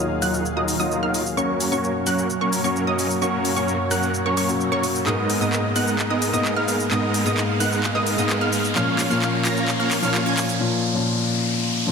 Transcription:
Already playing: D#2 D#3 F#3 A#3 D#4 F4 G#4 F5, riser
0.22 F#3 D#4 F4 A#4 F#5 F#6, open hi-hat, shaker
0.34 shaker
0.45 shaker
0.56 F#3 D#4 F4 A#4 D#5 D#6
0.68 open hi-hat, shaker
0.78 F#3 A#3 D#4 F4 A#4 D#5 D#6, shaker
0.92 shaker
1.03 F#3 D#4 F4 A#4 F5 F6
1.14 open hi-hat, shaker
1.26 shaker
1.37 F#2 F#3 A#3 C#4 F#4 A#4 C#5 C#6, shaker
1.61 open hi-hat, shaker
1.71 F#3 A#3 C#4 F#4 A#4 C#5 C#6, shaker
1.84 shaker
2.07 F#3 A#3 C#4 A#4 F#5 F#6, open hi-hat, shaker
2.18 shaker
2.30 shaker
2.41 F#3 A#3 C#4 A#4 C#5 C#6
2.53 open hi-hat, shaker
2.63 F#3 A#3 C#4 F#4 A#4 C#5 C#6, shaker
2.76 shaker
2.87 F#3 A#3 C#4 A#4 D#5 D#6
2.99 open hi-hat, shaker
3.11 shaker
3.21 F#3 A#3 C#4 F#4 A#4 C#5 C#6, shaker
3.45 open hi-hat, shaker
3.55 F#3 A#3 C#4 F#4 A#4 C#5 C#6, shaker
3.68 shaker
3.91 F#3 A#3 C#4 A#4 F#5 F#6, open hi-hat, shaker
4.03 shaker
4.14 shaker
4.26 F#3 A#3 C#4 A#4 C#5 C#6
4.37 F#3 A#3 C#4 A#4 C#5 C#6, open hi-hat, shaker
4.48 F#3 A#3 C#4 F#4, shaker
4.61 shaker
4.72 F#3 A#3 C#4 A#4 C#5 C#6
4.83 open hi-hat, shaker
4.95 shaker
5.06 G#2 G#3 B3 D#4 A#4 D#5 D#6, clap, shaker
5.30 open hi-hat, shaker
5.40 G#2 G#3 A#3 B3 D#4 A#4 D#5 D#6, shaker
5.53 clap, shaker
5.76 G#3 B3 D#4 A#4 F#5 F#6, open hi-hat, shaker
5.88 shaker
5.99 clap, shaker
6.10 G#3 B3 D#4 A#4 D#5 D#6
6.22 open hi-hat, shaker
6.32 G#2 G#3 A#3 B3 D#4 A#4 D#5 D#6, shaker
6.45 clap, shaker
6.56 G#3 B3 D#4 A#4 F5 F6
6.68 open hi-hat, shaker
6.80 shaker
6.91 G#2 G#3 B3 D#4 A#4 D#5 F5 D#6, clap, shaker
7.14 open hi-hat, shaker
7.25 G#2 G#3 A#3 B3 D#4 A#4 D#5 D#6, shaker
7.37 clap, shaker
7.60 G#3 B3 D#4 A#4 F#5 F#6, open hi-hat, shaker
7.72 shaker
7.84 clap, shaker
7.95 G#3 B3 D#4 A#4 D#5 D#6
8.07 open hi-hat, shaker
8.17 G#2 G#3 A#3 B3 D#4 A#4 D#5 D#6, shaker
8.30 clap, shaker
8.41 G#3 B3 D#4 A#4 F5 F6
8.53 open hi-hat, shaker
8.64 shaker
8.75 A#2 F3 A#3 C#4 F4 A#4 C#5 F5 F6, clap, shaker
8.99 clap, open hi-hat, shaker
9.09 A#2 F3 A#3 C#4 F4 C#5 F5 F6, shaker
9.22 clap, shaker
9.45 A#3 C#4 F4 C#5 A#5 A#6, clap, open hi-hat, shaker
9.57 shaker
9.68 clap, shaker
9.80 A#3 C#4 F4 C#5 F5 F6
9.91 clap, open hi-hat, shaker
10.02 A#2 F3 A#3 C#4 F4 C#5 F5 F6, shaker
10.14 clap, shaker
10.26 A#3 C#4 F4 C#5 G#5 G#6
10.37 clap, open hi-hat, shaker
10.49 shaker
10.60 A#2 F3 A#3 C#4 F4
10.94 A#2 F3 A#3 C#4 F4
11.86 A#2 F3 A#3 C#4 F4

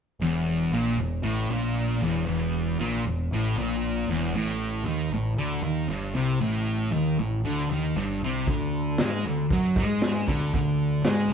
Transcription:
0.20 E1 E2
0.71 A#1 A#2
0.97 E1 E2
1.23 A1 A2
1.49 A#1 A#2
2.02 E1 E2
2.26 E1 E2
2.80 A#1 A#2
3.05 E1 E2
3.31 A1 A2
3.56 A#1 A#2
4.07 E1 E2
4.32 A1 A2
4.83 D#2 D#3
5.10 A1 A2
5.37 D2 D3
5.62 D#2 D#3
5.87 G1 G2
6.14 C2 C3
6.41 A1 A2
6.92 D#2 D#3
7.19 A1 A2
7.44 D2 D3
7.69 D#2 D#3
7.95 G1 G2
8.22 C2 C3
8.47 D2 D3, kick, open hi-hat
8.98 G#2 G#3, snare, open hi-hat
9.24 D2 D3
9.50 F#2 F#3, kick, open hi-hat
9.76 G#2 G#3, kick
10.02 snare, open hi-hat
10.27 D2 D3, kick
10.53 D2 D3, kick, open hi-hat
11.02 G#2, snare, open hi-hat
11.06 G#3
11.28 D2

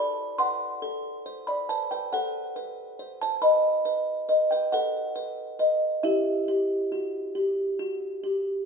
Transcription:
Already playing: E4 A4 B4 D5 B5
0.38 B4 F#5 C6
0.82 A4
1.26 C5
1.47 D5 B5
1.69 B4 C5 A5
1.91 B4 G5
2.13 A4 C5 F#5
2.56 B4
2.99 C5
3.21 C5 A5
3.42 B4 D#5 B5
3.85 B4
4.29 B4 D#5
4.51 B4 G5
4.72 A4 B4 F#5
5.16 B4
5.59 B4 D#5
6.03 E4 G4 E5
6.48 G4
6.92 F#4
7.35 G4
7.79 F#4
8.24 G4

